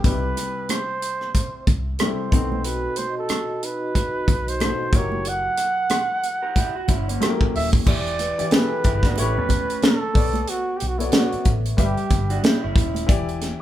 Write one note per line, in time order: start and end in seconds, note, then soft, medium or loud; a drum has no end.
0.00 1.22 C3 medium
0.00 0.32 A4 medium
0.00 0.33 B4 medium
0.04 0.31 C2 loud
0.04 1.22 G3 medium
0.04 0.12 D#4 medium
0.04 1.23 G4 medium
0.04 0.72 B4 medium
0.04 kick loud
0.04 closed hi-hat medium
0.11 1.26 E4 medium
0.37 cross-stick soft
0.37 closed hi-hat medium
0.37 muted conga soft
0.69 1.68 C5 medium
0.69 cross-stick medium
0.69 closed hi-hat medium
0.69 high conga medium
1.02 closed hi-hat medium
1.21 cross-stick soft
1.34 kick medium
1.34 closed hi-hat medium
1.34 muted conga medium
1.67 1.94 C2 medium
1.67 kick medium
1.67 closed hi-hat medium
1.67 muted conga medium
1.67 low conga medium
1.99 2.32 C3 medium
1.99 2.33 G3 medium
1.99 2.34 E4 medium
1.99 2.66 C5 medium
1.99 cross-stick loud
1.99 closed hi-hat medium
1.99 high conga medium
2.03 2.34 A4 medium
2.31 2.86 B1 medium
2.31 3.50 B2 medium
2.31 3.51 A3 medium
2.31 3.51 C4 medium
2.31 3.51 D#4 medium
2.31 kick loud
2.31 closed hi-hat medium
2.52 high conga medium
2.64 3.85 F#4 medium
2.64 2.99 B4 medium
2.64 closed hi-hat medium
2.89 4.05 A4 soft
2.96 3.17 C5 medium
2.96 closed hi-hat medium
2.96 muted conga soft
3.09 4.84 D#5 medium
3.18 3.66 A4 medium
3.29 cross-stick medium
3.29 closed hi-hat medium
3.29 high conga medium
3.62 5.22 D#4 medium
3.62 4.50 B4 loud
3.62 closed hi-hat medium
3.86 5.43 F#4 medium
3.95 kick medium
3.95 closed hi-hat medium
3.95 muted conga medium
4.06 5.60 A4 soft
4.28 4.70 B1 medium
4.28 kick medium
4.28 closed hi-hat medium
4.28 muted conga soft
4.28 low conga medium
4.48 4.97 C5 loud
4.48 closed hi-hat medium
4.60 4.93 B2 medium
4.60 4.93 A3 medium
4.60 4.94 D#4 medium
4.60 4.94 C5 medium
4.60 cross-stick loud
4.60 closed hi-hat medium
4.60 high conga medium
4.93 5.47 F#1 medium
4.93 6.11 F#3 medium
4.93 6.12 E4 medium
4.93 6.12 G4 medium
4.93 6.12 A#4 medium
4.93 5.30 C#5 loud
4.93 kick loud
4.93 closed hi-hat medium
5.12 high conga medium
5.25 7.23 F#5 loud
5.25 closed hi-hat medium
5.57 cross-stick soft
5.57 closed hi-hat medium
5.89 cross-stick medium
5.89 closed hi-hat medium
5.89 high conga medium
6.23 closed hi-hat medium
6.42 6.55 G4 soft
6.42 6.56 A#4 medium
6.56 6.75 E4 medium
6.56 6.74 G4 medium
6.56 kick medium
6.56 closed hi-hat medium
6.56 muted conga medium
6.76 6.89 F#4 medium
6.88 7.16 G1 medium
6.88 7.07 C#4 medium
6.88 7.07 E4 medium
6.88 kick medium
6.88 closed hi-hat medium
6.88 muted conga medium
6.88 low conga medium
7.08 7.83 A#3 medium
7.08 7.83 C#4 medium
7.08 closed hi-hat medium
7.20 7.80 F#3 medium
7.20 7.80 E4 medium
7.20 7.81 G4 medium
7.20 7.30 A4 medium
7.20 cross-stick loud
7.20 closed hi-hat medium
7.20 high conga medium
7.30 7.85 A#4 medium
7.41 kick medium
7.55 7.82 D#1 medium
7.55 7.70 E5 loud
7.55 open hi-hat medium
7.73 kick loud
7.73 high conga medium
7.86 8.29 E1 medium
7.86 8.31 E3 medium
7.86 8.32 E4 medium
7.86 8.32 G4 medium
7.86 8.32 D5 medium
7.86 8.55 D5 loud
7.86 kick loud
7.86 crash medium
8.06 closed hi-hat soft
8.19 9.46 B4 medium
8.19 closed hi-hat medium
8.19 muted conga soft
8.38 8.50 E3 medium
8.38 8.51 E4 medium
8.38 8.51 G4 medium
8.38 8.52 D5 medium
8.38 muted fingered electric bass stroke soft
8.38 closed hi-hat medium
8.51 9.17 E3 medium
8.51 9.18 E4 medium
8.51 9.16 G4 medium
8.51 9.18 B4 loud
8.51 snare loud
8.51 closed hi-hat medium
8.51 high conga medium
8.55 8.61 G#4 medium
8.62 9.22 A4 medium
8.84 9.12 G1 medium
8.84 9.03 E4 soft
8.84 9.03 G4 medium
8.84 kick medium
8.84 closed hi-hat medium
9.03 9.17 D4 medium
9.03 9.17 F#4 medium
9.03 kick medium
9.03 snare soft
9.03 closed hi-hat soft
9.16 9.38 A1 medium
9.16 10.05 A3 medium
9.16 9.36 C#4 medium
9.16 9.35 E4 medium
9.16 10.06 G4 medium
9.16 10.06 B4 medium
9.16 9.85 B4 loud
9.16 10.07 C#5 medium
9.16 closed hi-hat loud
9.16 muted conga medium
9.37 9.64 E2 medium
9.37 10.12 A3 medium
9.37 10.11 C#4 medium
9.49 kick medium
9.49 closed hi-hat medium
9.49 muted conga medium
9.49 low conga medium
9.70 closed hi-hat medium
9.82 10.51 A4 medium
9.82 snare loud
9.82 closed hi-hat medium
9.82 high conga medium
10.13 10.42 B1 medium
10.13 10.88 B3 medium
10.13 10.88 A4 medium
10.13 10.89 C#5 medium
10.13 10.89 D5 medium
10.13 kick loud
10.13 open hi-hat soft
10.34 closed hi-hat medium
10.34 high conga medium
10.47 10.78 F#4 medium
10.47 closed hi-hat medium
10.77 10.89 G4 medium
10.77 closed hi-hat medium
10.82 11.08 B1 medium
10.87 11.00 F#4 medium
10.98 11.11 B3 medium
10.98 11.08 E4 medium
10.98 11.12 A4 medium
10.98 11.12 C#5 medium
10.98 11.12 D5 medium
10.98 closed hi-hat medium
11.06 11.13 F#4 medium
11.12 11.78 B3 medium
11.12 11.50 F#4 medium
11.12 12.07 A4 medium
11.12 11.78 A4 medium
11.12 11.79 C#5 medium
11.12 11.79 D5 medium
11.12 snare loud
11.12 closed hi-hat medium
11.12 high conga medium
11.32 muted fingered electric bass stroke soft
11.32 closed hi-hat soft
11.38 12.29 E5 soft
11.45 11.72 A1 medium
11.45 kick medium
11.45 closed hi-hat medium
11.65 closed hi-hat medium
11.77 11.94 G1 loud
11.77 12.95 G3 medium
11.77 12.96 G4 medium
11.77 12.40 G4 medium
11.77 12.96 B4 medium
11.77 12.97 E5 medium
11.77 kick medium
11.77 closed hi-hat medium
11.77 muted conga medium
11.97 closed hi-hat soft
12.10 12.38 G1 medium
12.10 kick medium
12.10 closed hi-hat medium
12.10 muted conga medium
12.10 low conga medium
12.30 12.43 D4 medium
12.30 12.43 F#4 medium
12.30 closed hi-hat medium
12.43 12.62 E4 medium
12.43 12.61 G4 medium
12.43 snare loud
12.43 closed hi-hat medium
12.43 high conga medium
12.63 12.75 F#1 medium
12.63 13.07 C#4 medium
12.63 13.06 E4 medium
12.76 13.03 D#1 medium
12.76 13.38 E4 medium
12.76 kick loud
12.76 closed hi-hat medium
12.95 closed hi-hat medium
12.95 high conga medium
13.07 13.51 E1 medium
13.07 13.52 E3 medium
13.07 13.53 E4 medium
13.07 13.41 G4 medium
13.07 13.41 D5 loud
13.07 kick loud
13.07 closed hi-hat medium
13.28 closed hi-hat soft
13.41 snare soft
13.41 closed hi-hat medium